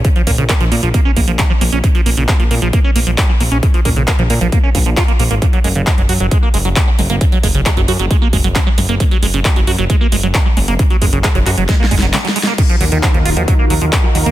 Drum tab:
CC |------------------------------------------------|------------------------------------------------|------------------------------------------------|------------------------------------------------|
HH |x--x--o--x--x--x--o--x--x-----o--x--x-----o--x--|x--x--o--x--x--x--o--x--x-----o--x--x-----o--x--|x--x--o--x--x--x--o--x--x-----o--x--x--x--o--x--|x--x--o--x--x--x--o--x--x-----o--x--x-----o--x--|
CP |------------x-----------------------x-----------|------------x-----------------------x-----------|------------x-----------------------x-----------|------------x-----------------------x-----------|
SD |------------------------------------------------|------------------------------------------------|------------------------------------------------|------------------------------------------------|
BD |o-----o-----o-----------o-----o-----o-----------|o-----------o-----------o-----------o-----------|o-----o-----o-----------o-----o-----o-----------|o-----------o-----------o-----------o-----------|

CC |------------------------------------------------|------------------------------------------------|------------------------------------------------|x-----------------------------------------------|
HH |x--x--o--x--x--x--o--x--x-----o--x--x-----o--x--|x--x--o--x--x--x--o--x--x-----o--x--x-----o--x--|x--x--o--x--x--x--o--x--x-----o--x--x--x--o--x--|x--x--o--x--x--x--o--x--x-----o--x--x-----o--x--|
CP |------------x-----------------------x-----------|------------x-----------------------x-----------|------------x-----x-----------------x-----------|------------x-----------------------x-----------|
SD |------------------------------------------------|------------------------------------------------|------------------------o---o---o---o---o---o---|------------------------------------------------|
BD |o-----o-----o-----------o-----o-----o-----------|o-----------o-----------o-----------o-----------|o-----o-----o-----------o-----o-----------------|o-----------o-----------o-----------o-----------|